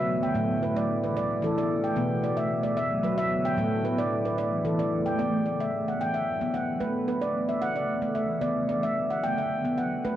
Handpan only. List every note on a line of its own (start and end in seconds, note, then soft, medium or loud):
0.00 0.28 F#3 medium
0.00 0.22 B4 medium
0.00 0.22 E5 medium
0.23 0.49 G5 medium
0.35 1.42 A2 loud
0.35 0.62 A3 medium
0.63 1.02 B4 medium
0.76 0.78 D5 medium
1.04 1.43 B4 medium
1.17 1.43 D5 medium
1.42 1.89 E3 medium
1.42 1.84 A4 medium
1.58 1.84 D5 medium
1.84 2.10 G5 medium
1.96 3.04 B2 medium
1.96 2.23 B3 medium
2.24 2.62 D5 medium
2.37 2.39 E5 medium
2.63 3.03 D5 medium
2.77 3.04 E5 medium
3.03 3.50 F#3 medium
3.03 3.45 B4 medium
3.18 3.45 E5 medium
3.45 3.72 G5 medium
3.57 4.65 A2 loud
3.57 3.85 A3 medium
3.85 4.24 B4 medium
3.98 4.00 D5 medium
4.25 4.65 B4 medium
4.38 4.65 D5 medium
4.65 5.12 E3 medium
4.65 5.06 A4 medium
4.79 5.06 D5 medium
5.06 5.33 G5 medium
5.19 5.46 B3 medium
5.19 5.44 D5 medium
5.46 5.87 D5 medium
5.60 5.62 E5 medium
5.88 6.27 F#5 medium
6.01 6.27 G5 medium
6.14 6.54 E5 medium
6.41 6.68 B3 medium
6.54 6.95 F#5 medium
6.80 7.08 A3 medium
6.80 7.07 B4 medium
7.08 7.49 B4 medium
7.21 7.23 D5 medium
7.49 7.89 E5 medium
7.62 7.89 F#5 medium
7.76 8.16 D5 medium
8.02 8.29 A3 medium
8.15 8.56 E5 medium
8.41 8.69 B3 medium
8.41 8.68 D5 medium
8.69 9.10 D5 medium
8.83 8.85 E5 medium
9.10 9.51 F#5 medium
9.23 9.51 G5 medium
9.38 9.78 E5 medium
9.65 9.92 B3 medium
9.78 10.16 F#5 medium
10.05 10.16 A3 medium
10.05 10.16 B4 medium